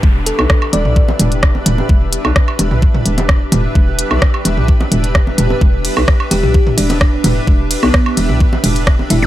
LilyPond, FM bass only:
\new Staff \with { instrumentName = "FM bass" } { \clef bass \time 4/4 \key e \minor \tempo 4 = 129 e,,8 r16 b,,16 r8 e,,16 b,,8 r16 e,,8. r16 e,,16 r16 | e,,8 r16 b,,16 r8 e,,16 b,,8 r16 e,,8. r16 e,,16 r16 | e,,8 r16 b,,16 r8 e,,16 b,,8 r16 e,,8. r16 e,,16 r16 | e,,8 r16 b,,16 r8 e,,16 b,,8 r16 e,,8. r16 e,,16 r16 |
e,,8 r16 b,,16 r8 e,,16 b,,8 r16 e,,8. r16 e,,16 r16 | }